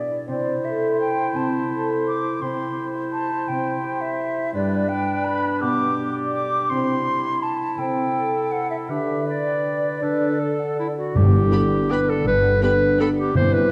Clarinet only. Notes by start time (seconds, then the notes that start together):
0.29 E4
2.43 E4
4.54 D4
6.70 E4
8.90 G4
9.28 D5
10.03 B4
10.39 A4
10.79 E4
10.98 F#4
11.16 G4
11.91 B4
12.09 A4
12.27 B4
12.63 B4
13.00 A4
13.19 G4
13.36 C5
13.53 B4